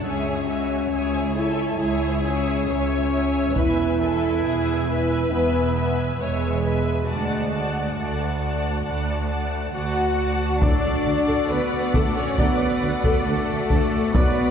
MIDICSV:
0, 0, Header, 1, 13, 480
1, 0, Start_track
1, 0, Tempo, 882353
1, 16, Time_signature, 4, 2, 24, 8
1, 7892, End_track
2, 0, Start_track
2, 0, Title_t, "Violin section"
2, 0, Program_c, 0, 48
2, 17, Note_on_c, 0, 80, 45
2, 248, Note_off_c, 0, 80, 0
2, 255, Note_on_c, 0, 80, 36
2, 491, Note_off_c, 0, 80, 0
2, 498, Note_on_c, 0, 80, 43
2, 732, Note_off_c, 0, 80, 0
2, 739, Note_on_c, 0, 80, 41
2, 968, Note_off_c, 0, 80, 0
2, 975, Note_on_c, 0, 80, 42
2, 1211, Note_off_c, 0, 80, 0
2, 1217, Note_on_c, 0, 80, 39
2, 1447, Note_off_c, 0, 80, 0
2, 1454, Note_on_c, 0, 80, 43
2, 1685, Note_off_c, 0, 80, 0
2, 1692, Note_on_c, 0, 80, 47
2, 1923, Note_off_c, 0, 80, 0
2, 1929, Note_on_c, 0, 80, 54
2, 2164, Note_off_c, 0, 80, 0
2, 2171, Note_on_c, 0, 80, 41
2, 2401, Note_off_c, 0, 80, 0
2, 2408, Note_on_c, 0, 80, 50
2, 2644, Note_off_c, 0, 80, 0
2, 2650, Note_on_c, 0, 80, 44
2, 2883, Note_off_c, 0, 80, 0
2, 2890, Note_on_c, 0, 80, 47
2, 3123, Note_off_c, 0, 80, 0
2, 3130, Note_on_c, 0, 80, 42
2, 3366, Note_off_c, 0, 80, 0
2, 3372, Note_on_c, 0, 80, 42
2, 3601, Note_off_c, 0, 80, 0
2, 3608, Note_on_c, 0, 80, 38
2, 3847, Note_off_c, 0, 80, 0
2, 3848, Note_on_c, 0, 81, 44
2, 4080, Note_off_c, 0, 81, 0
2, 4087, Note_on_c, 0, 81, 35
2, 4323, Note_off_c, 0, 81, 0
2, 4329, Note_on_c, 0, 81, 35
2, 4563, Note_off_c, 0, 81, 0
2, 4569, Note_on_c, 0, 81, 35
2, 4803, Note_off_c, 0, 81, 0
2, 4809, Note_on_c, 0, 81, 35
2, 5046, Note_off_c, 0, 81, 0
2, 5052, Note_on_c, 0, 81, 31
2, 5287, Note_off_c, 0, 81, 0
2, 5293, Note_on_c, 0, 81, 31
2, 5295, Note_on_c, 0, 78, 45
2, 5527, Note_off_c, 0, 81, 0
2, 5533, Note_on_c, 0, 81, 41
2, 5754, Note_off_c, 0, 78, 0
2, 5770, Note_off_c, 0, 81, 0
2, 5776, Note_on_c, 0, 74, 60
2, 6252, Note_on_c, 0, 71, 58
2, 6256, Note_off_c, 0, 74, 0
2, 6494, Note_off_c, 0, 71, 0
2, 6496, Note_on_c, 0, 69, 48
2, 6614, Note_on_c, 0, 73, 42
2, 6616, Note_off_c, 0, 69, 0
2, 6732, Note_on_c, 0, 71, 49
2, 6735, Note_off_c, 0, 73, 0
2, 7205, Note_off_c, 0, 71, 0
2, 7215, Note_on_c, 0, 69, 58
2, 7695, Note_on_c, 0, 71, 68
2, 7696, Note_off_c, 0, 69, 0
2, 7892, Note_off_c, 0, 71, 0
2, 7892, End_track
3, 0, Start_track
3, 0, Title_t, "Trumpet"
3, 0, Program_c, 1, 56
3, 5775, Note_on_c, 1, 74, 43
3, 5956, Note_off_c, 1, 74, 0
3, 6737, Note_on_c, 1, 74, 49
3, 6916, Note_off_c, 1, 74, 0
3, 7693, Note_on_c, 1, 74, 47
3, 7874, Note_off_c, 1, 74, 0
3, 7892, End_track
4, 0, Start_track
4, 0, Title_t, "Viola section"
4, 0, Program_c, 2, 48
4, 23, Note_on_c, 2, 76, 43
4, 24, Note_on_c, 2, 73, 44
4, 254, Note_off_c, 2, 73, 0
4, 254, Note_off_c, 2, 76, 0
4, 260, Note_on_c, 2, 76, 38
4, 261, Note_on_c, 2, 73, 37
4, 493, Note_off_c, 2, 73, 0
4, 494, Note_off_c, 2, 76, 0
4, 499, Note_on_c, 2, 73, 42
4, 500, Note_on_c, 2, 76, 37
4, 733, Note_off_c, 2, 73, 0
4, 733, Note_off_c, 2, 76, 0
4, 745, Note_on_c, 2, 76, 43
4, 747, Note_on_c, 2, 73, 40
4, 976, Note_off_c, 2, 76, 0
4, 977, Note_off_c, 2, 73, 0
4, 982, Note_on_c, 2, 76, 46
4, 983, Note_on_c, 2, 73, 47
4, 1215, Note_off_c, 2, 73, 0
4, 1215, Note_off_c, 2, 76, 0
4, 1222, Note_on_c, 2, 73, 47
4, 1224, Note_on_c, 2, 76, 48
4, 1454, Note_off_c, 2, 73, 0
4, 1456, Note_off_c, 2, 76, 0
4, 1465, Note_on_c, 2, 73, 44
4, 1466, Note_on_c, 2, 76, 45
4, 1695, Note_off_c, 2, 76, 0
4, 1696, Note_off_c, 2, 73, 0
4, 1701, Note_on_c, 2, 76, 47
4, 1702, Note_on_c, 2, 73, 46
4, 1934, Note_off_c, 2, 73, 0
4, 1934, Note_off_c, 2, 76, 0
4, 1943, Note_on_c, 2, 71, 52
4, 1944, Note_on_c, 2, 76, 52
4, 2175, Note_off_c, 2, 71, 0
4, 2176, Note_off_c, 2, 76, 0
4, 2184, Note_on_c, 2, 71, 50
4, 2184, Note_on_c, 2, 76, 50
4, 2416, Note_off_c, 2, 71, 0
4, 2416, Note_off_c, 2, 76, 0
4, 2425, Note_on_c, 2, 71, 52
4, 2425, Note_on_c, 2, 76, 49
4, 2655, Note_off_c, 2, 76, 0
4, 2656, Note_off_c, 2, 71, 0
4, 2661, Note_on_c, 2, 76, 47
4, 2663, Note_on_c, 2, 71, 47
4, 2893, Note_off_c, 2, 71, 0
4, 2894, Note_off_c, 2, 76, 0
4, 2900, Note_on_c, 2, 71, 51
4, 2900, Note_on_c, 2, 76, 51
4, 3131, Note_off_c, 2, 76, 0
4, 3133, Note_off_c, 2, 71, 0
4, 3138, Note_on_c, 2, 76, 47
4, 3139, Note_on_c, 2, 71, 47
4, 3372, Note_off_c, 2, 76, 0
4, 3373, Note_off_c, 2, 71, 0
4, 3382, Note_on_c, 2, 71, 41
4, 3384, Note_on_c, 2, 76, 44
4, 3610, Note_off_c, 2, 76, 0
4, 3611, Note_off_c, 2, 71, 0
4, 3617, Note_on_c, 2, 71, 37
4, 3617, Note_on_c, 2, 76, 38
4, 3852, Note_off_c, 2, 71, 0
4, 3852, Note_off_c, 2, 76, 0
4, 3856, Note_on_c, 2, 74, 41
4, 3857, Note_on_c, 2, 78, 39
4, 4087, Note_off_c, 2, 74, 0
4, 4088, Note_off_c, 2, 78, 0
4, 4093, Note_on_c, 2, 74, 38
4, 4095, Note_on_c, 2, 78, 35
4, 4330, Note_off_c, 2, 74, 0
4, 4331, Note_off_c, 2, 78, 0
4, 4337, Note_on_c, 2, 78, 37
4, 4338, Note_on_c, 2, 74, 37
4, 4567, Note_off_c, 2, 78, 0
4, 4570, Note_off_c, 2, 74, 0
4, 4574, Note_on_c, 2, 78, 37
4, 4577, Note_on_c, 2, 74, 36
4, 4809, Note_off_c, 2, 78, 0
4, 4812, Note_off_c, 2, 74, 0
4, 4815, Note_on_c, 2, 78, 39
4, 4818, Note_on_c, 2, 74, 37
4, 5049, Note_off_c, 2, 78, 0
4, 5051, Note_off_c, 2, 74, 0
4, 5056, Note_on_c, 2, 78, 33
4, 5057, Note_on_c, 2, 74, 34
4, 5285, Note_off_c, 2, 74, 0
4, 5286, Note_off_c, 2, 78, 0
4, 5292, Note_on_c, 2, 74, 32
4, 5292, Note_on_c, 2, 78, 36
4, 5529, Note_off_c, 2, 74, 0
4, 5529, Note_off_c, 2, 78, 0
4, 5536, Note_on_c, 2, 74, 32
4, 5537, Note_on_c, 2, 78, 30
4, 5764, Note_off_c, 2, 74, 0
4, 5769, Note_on_c, 2, 69, 52
4, 5771, Note_on_c, 2, 74, 44
4, 5772, Note_off_c, 2, 78, 0
4, 5884, Note_off_c, 2, 69, 0
4, 5894, Note_on_c, 2, 69, 37
4, 5937, Note_off_c, 2, 69, 0
4, 6016, Note_on_c, 2, 66, 36
4, 6059, Note_off_c, 2, 66, 0
4, 6133, Note_on_c, 2, 69, 55
4, 6239, Note_off_c, 2, 69, 0
4, 6246, Note_on_c, 2, 69, 43
4, 6290, Note_off_c, 2, 69, 0
4, 6370, Note_on_c, 2, 66, 40
4, 6414, Note_off_c, 2, 66, 0
4, 6492, Note_on_c, 2, 69, 62
4, 6606, Note_off_c, 2, 69, 0
4, 6735, Note_on_c, 2, 69, 54
4, 6847, Note_off_c, 2, 69, 0
4, 6856, Note_on_c, 2, 69, 39
4, 6899, Note_off_c, 2, 69, 0
4, 6975, Note_on_c, 2, 66, 45
4, 7018, Note_off_c, 2, 66, 0
4, 7094, Note_on_c, 2, 69, 52
4, 7207, Note_off_c, 2, 69, 0
4, 7214, Note_on_c, 2, 69, 45
4, 7257, Note_off_c, 2, 69, 0
4, 7331, Note_on_c, 2, 66, 45
4, 7375, Note_off_c, 2, 66, 0
4, 7448, Note_on_c, 2, 69, 51
4, 7562, Note_off_c, 2, 69, 0
4, 7568, Note_on_c, 2, 69, 53
4, 7612, Note_off_c, 2, 69, 0
4, 7672, Note_off_c, 2, 74, 0
4, 7687, Note_on_c, 2, 74, 51
4, 7689, Note_on_c, 2, 71, 49
4, 7804, Note_off_c, 2, 71, 0
4, 7813, Note_on_c, 2, 71, 42
4, 7857, Note_off_c, 2, 71, 0
4, 7892, Note_off_c, 2, 74, 0
4, 7892, End_track
5, 0, Start_track
5, 0, Title_t, "Flute section"
5, 0, Program_c, 3, 73
5, 5299, Note_on_c, 3, 78, 47
5, 5756, Note_off_c, 3, 78, 0
5, 5779, Note_on_c, 3, 74, 64
5, 6248, Note_off_c, 3, 74, 0
5, 6259, Note_on_c, 3, 71, 60
5, 6497, Note_on_c, 3, 69, 48
5, 6498, Note_off_c, 3, 71, 0
5, 6616, Note_off_c, 3, 69, 0
5, 6618, Note_on_c, 3, 73, 48
5, 6731, Note_on_c, 3, 71, 52
5, 6737, Note_off_c, 3, 73, 0
5, 7214, Note_off_c, 3, 71, 0
5, 7215, Note_on_c, 3, 69, 56
5, 7686, Note_off_c, 3, 69, 0
5, 7696, Note_on_c, 3, 71, 72
5, 7892, Note_off_c, 3, 71, 0
5, 7892, End_track
6, 0, Start_track
6, 0, Title_t, "Violin section"
6, 0, Program_c, 4, 48
6, 21, Note_on_c, 4, 68, 47
6, 254, Note_off_c, 4, 68, 0
6, 260, Note_on_c, 4, 66, 40
6, 498, Note_off_c, 4, 66, 0
6, 501, Note_on_c, 4, 68, 43
6, 734, Note_off_c, 4, 68, 0
6, 742, Note_on_c, 4, 69, 49
6, 979, Note_off_c, 4, 69, 0
6, 980, Note_on_c, 4, 68, 58
6, 1458, Note_off_c, 4, 68, 0
6, 1460, Note_on_c, 4, 73, 63
6, 1938, Note_off_c, 4, 73, 0
6, 1938, Note_on_c, 4, 71, 55
6, 2176, Note_on_c, 4, 69, 59
6, 2177, Note_off_c, 4, 71, 0
6, 2416, Note_off_c, 4, 69, 0
6, 2420, Note_on_c, 4, 68, 48
6, 2653, Note_off_c, 4, 68, 0
6, 2655, Note_on_c, 4, 71, 72
6, 3361, Note_off_c, 4, 71, 0
6, 3376, Note_on_c, 4, 73, 55
6, 3612, Note_on_c, 4, 71, 50
6, 3616, Note_off_c, 4, 73, 0
6, 3849, Note_off_c, 4, 71, 0
6, 3851, Note_on_c, 4, 66, 45
6, 5512, Note_off_c, 4, 66, 0
6, 5773, Note_on_c, 4, 78, 53
6, 5775, Note_on_c, 4, 74, 55
6, 7673, Note_off_c, 4, 78, 0
6, 7674, Note_off_c, 4, 74, 0
6, 7696, Note_on_c, 4, 74, 57
6, 7696, Note_on_c, 4, 78, 59
6, 7892, Note_off_c, 4, 74, 0
6, 7892, Note_off_c, 4, 78, 0
6, 7892, End_track
7, 0, Start_track
7, 0, Title_t, "Pipe organ"
7, 0, Program_c, 5, 19
7, 5770, Note_on_c, 5, 69, 50
7, 5772, Note_on_c, 5, 62, 49
7, 5772, Note_on_c, 5, 66, 47
7, 5773, Note_on_c, 5, 74, 50
7, 7671, Note_off_c, 5, 69, 0
7, 7672, Note_off_c, 5, 62, 0
7, 7672, Note_off_c, 5, 66, 0
7, 7673, Note_off_c, 5, 74, 0
7, 7698, Note_on_c, 5, 74, 58
7, 7699, Note_on_c, 5, 71, 54
7, 7700, Note_on_c, 5, 66, 52
7, 7701, Note_on_c, 5, 62, 55
7, 7892, Note_off_c, 5, 62, 0
7, 7892, Note_off_c, 5, 66, 0
7, 7892, Note_off_c, 5, 71, 0
7, 7892, Note_off_c, 5, 74, 0
7, 7892, End_track
8, 0, Start_track
8, 0, Title_t, "French horn section"
8, 0, Program_c, 6, 60
8, 19, Note_on_c, 6, 61, 67
8, 732, Note_on_c, 6, 64, 64
8, 738, Note_off_c, 6, 61, 0
8, 964, Note_off_c, 6, 64, 0
8, 971, Note_on_c, 6, 64, 70
8, 1209, Note_off_c, 6, 64, 0
8, 1210, Note_on_c, 6, 61, 74
8, 1918, Note_off_c, 6, 61, 0
8, 1933, Note_on_c, 6, 64, 86
8, 2890, Note_on_c, 6, 59, 75
8, 2895, Note_off_c, 6, 64, 0
8, 3280, Note_off_c, 6, 59, 0
8, 3372, Note_on_c, 6, 56, 62
8, 3845, Note_off_c, 6, 56, 0
8, 3854, Note_on_c, 6, 56, 58
8, 4325, Note_off_c, 6, 56, 0
8, 4337, Note_on_c, 6, 57, 45
8, 5295, Note_on_c, 6, 66, 52
8, 5297, Note_off_c, 6, 57, 0
8, 5754, Note_off_c, 6, 66, 0
8, 5780, Note_on_c, 6, 62, 66
8, 6249, Note_off_c, 6, 62, 0
8, 6258, Note_on_c, 6, 59, 64
8, 6492, Note_off_c, 6, 59, 0
8, 6502, Note_on_c, 6, 57, 54
8, 6619, Note_off_c, 6, 57, 0
8, 6624, Note_on_c, 6, 61, 64
8, 6733, Note_on_c, 6, 59, 60
8, 6740, Note_off_c, 6, 61, 0
8, 7211, Note_on_c, 6, 57, 61
8, 7215, Note_off_c, 6, 59, 0
8, 7684, Note_off_c, 6, 57, 0
8, 7694, Note_on_c, 6, 59, 83
8, 7892, Note_off_c, 6, 59, 0
8, 7892, End_track
9, 0, Start_track
9, 0, Title_t, "Trombone section"
9, 0, Program_c, 7, 61
9, 5778, Note_on_c, 7, 45, 47
9, 5782, Note_on_c, 7, 54, 46
9, 5957, Note_off_c, 7, 45, 0
9, 5959, Note_off_c, 7, 54, 0
9, 6731, Note_on_c, 7, 45, 47
9, 6735, Note_on_c, 7, 54, 53
9, 6913, Note_off_c, 7, 45, 0
9, 6915, Note_off_c, 7, 54, 0
9, 7691, Note_on_c, 7, 47, 46
9, 7691, Note_on_c, 7, 54, 48
9, 7873, Note_off_c, 7, 47, 0
9, 7873, Note_off_c, 7, 54, 0
9, 7892, End_track
10, 0, Start_track
10, 0, Title_t, "Cello section"
10, 0, Program_c, 8, 48
10, 19, Note_on_c, 8, 37, 50
10, 441, Note_off_c, 8, 37, 0
10, 499, Note_on_c, 8, 37, 48
10, 921, Note_off_c, 8, 37, 0
10, 979, Note_on_c, 8, 37, 56
10, 1401, Note_off_c, 8, 37, 0
10, 1460, Note_on_c, 8, 37, 51
10, 1882, Note_off_c, 8, 37, 0
10, 1934, Note_on_c, 8, 40, 61
10, 2359, Note_off_c, 8, 40, 0
10, 2411, Note_on_c, 8, 40, 59
10, 2837, Note_off_c, 8, 40, 0
10, 2894, Note_on_c, 8, 40, 63
10, 3319, Note_off_c, 8, 40, 0
10, 3375, Note_on_c, 8, 40, 51
10, 3799, Note_off_c, 8, 40, 0
10, 3854, Note_on_c, 8, 38, 46
10, 4279, Note_off_c, 8, 38, 0
10, 4336, Note_on_c, 8, 38, 44
10, 4759, Note_off_c, 8, 38, 0
10, 4814, Note_on_c, 8, 38, 43
10, 5239, Note_off_c, 8, 38, 0
10, 5298, Note_on_c, 8, 38, 41
10, 5298, Note_on_c, 8, 66, 49
10, 5720, Note_off_c, 8, 38, 0
10, 5755, Note_off_c, 8, 66, 0
10, 5779, Note_on_c, 8, 62, 55
10, 6255, Note_on_c, 8, 59, 57
10, 6258, Note_off_c, 8, 62, 0
10, 6496, Note_off_c, 8, 59, 0
10, 6496, Note_on_c, 8, 57, 49
10, 6615, Note_on_c, 8, 61, 45
10, 6616, Note_off_c, 8, 57, 0
10, 6736, Note_off_c, 8, 61, 0
10, 6738, Note_on_c, 8, 59, 51
10, 7214, Note_on_c, 8, 57, 55
10, 7217, Note_off_c, 8, 59, 0
10, 7686, Note_off_c, 8, 57, 0
10, 7695, Note_on_c, 8, 59, 69
10, 7892, Note_off_c, 8, 59, 0
10, 7892, End_track
11, 0, Start_track
11, 0, Title_t, "Double bass section"
11, 0, Program_c, 10, 48
11, 19, Note_on_c, 10, 37, 51
11, 441, Note_off_c, 10, 37, 0
11, 497, Note_on_c, 10, 37, 42
11, 920, Note_off_c, 10, 37, 0
11, 978, Note_on_c, 10, 37, 50
11, 1401, Note_off_c, 10, 37, 0
11, 1459, Note_on_c, 10, 37, 61
11, 1881, Note_off_c, 10, 37, 0
11, 1936, Note_on_c, 10, 28, 61
11, 2360, Note_off_c, 10, 28, 0
11, 2415, Note_on_c, 10, 28, 55
11, 2839, Note_off_c, 10, 28, 0
11, 2896, Note_on_c, 10, 28, 55
11, 3320, Note_off_c, 10, 28, 0
11, 3374, Note_on_c, 10, 28, 56
11, 3798, Note_off_c, 10, 28, 0
11, 3856, Note_on_c, 10, 38, 47
11, 4280, Note_off_c, 10, 38, 0
11, 4333, Note_on_c, 10, 38, 41
11, 4758, Note_off_c, 10, 38, 0
11, 4817, Note_on_c, 10, 38, 43
11, 5240, Note_off_c, 10, 38, 0
11, 5291, Note_on_c, 10, 38, 44
11, 5717, Note_off_c, 10, 38, 0
11, 5773, Note_on_c, 10, 38, 57
11, 5817, Note_off_c, 10, 38, 0
11, 5894, Note_on_c, 10, 38, 38
11, 5937, Note_off_c, 10, 38, 0
11, 6013, Note_on_c, 10, 38, 39
11, 6057, Note_off_c, 10, 38, 0
11, 6134, Note_on_c, 10, 38, 59
11, 6177, Note_off_c, 10, 38, 0
11, 6253, Note_on_c, 10, 38, 41
11, 6296, Note_off_c, 10, 38, 0
11, 6374, Note_on_c, 10, 38, 37
11, 6417, Note_off_c, 10, 38, 0
11, 6492, Note_on_c, 10, 38, 56
11, 6536, Note_off_c, 10, 38, 0
11, 6732, Note_on_c, 10, 38, 49
11, 6775, Note_off_c, 10, 38, 0
11, 6853, Note_on_c, 10, 38, 44
11, 6896, Note_off_c, 10, 38, 0
11, 6974, Note_on_c, 10, 38, 41
11, 7017, Note_off_c, 10, 38, 0
11, 7092, Note_on_c, 10, 38, 61
11, 7135, Note_off_c, 10, 38, 0
11, 7212, Note_on_c, 10, 38, 47
11, 7256, Note_off_c, 10, 38, 0
11, 7333, Note_on_c, 10, 38, 38
11, 7377, Note_off_c, 10, 38, 0
11, 7450, Note_on_c, 10, 38, 59
11, 7493, Note_off_c, 10, 38, 0
11, 7573, Note_on_c, 10, 38, 42
11, 7617, Note_off_c, 10, 38, 0
11, 7692, Note_on_c, 10, 35, 59
11, 7736, Note_off_c, 10, 35, 0
11, 7811, Note_on_c, 10, 35, 39
11, 7854, Note_off_c, 10, 35, 0
11, 7892, End_track
12, 0, Start_track
12, 0, Title_t, "Tuba"
12, 0, Program_c, 11, 58
12, 5772, Note_on_c, 11, 38, 56
12, 5821, Note_off_c, 11, 38, 0
12, 6016, Note_on_c, 11, 38, 41
12, 6064, Note_off_c, 11, 38, 0
12, 6253, Note_on_c, 11, 38, 38
12, 6301, Note_off_c, 11, 38, 0
12, 6495, Note_on_c, 11, 38, 53
12, 6543, Note_off_c, 11, 38, 0
12, 6734, Note_on_c, 11, 38, 58
12, 6783, Note_off_c, 11, 38, 0
12, 6971, Note_on_c, 11, 38, 41
12, 7020, Note_off_c, 11, 38, 0
12, 7216, Note_on_c, 11, 38, 41
12, 7264, Note_off_c, 11, 38, 0
12, 7453, Note_on_c, 11, 38, 62
12, 7501, Note_off_c, 11, 38, 0
12, 7691, Note_on_c, 11, 35, 58
12, 7740, Note_off_c, 11, 35, 0
12, 7892, End_track
13, 0, Start_track
13, 0, Title_t, "Taiko and cinematic ensemble drums"
13, 1937, Note_on_c, 9, 41, 56
13, 1991, Note_off_c, 9, 41, 0
13, 5776, Note_on_c, 9, 41, 80
13, 5830, Note_off_c, 9, 41, 0
13, 6496, Note_on_c, 9, 41, 74
13, 6550, Note_off_c, 9, 41, 0
13, 6737, Note_on_c, 9, 41, 65
13, 6791, Note_off_c, 9, 41, 0
13, 7095, Note_on_c, 9, 41, 67
13, 7149, Note_off_c, 9, 41, 0
13, 7454, Note_on_c, 9, 41, 63
13, 7508, Note_off_c, 9, 41, 0
13, 7695, Note_on_c, 9, 41, 87
13, 7750, Note_off_c, 9, 41, 0
13, 7892, End_track
0, 0, End_of_file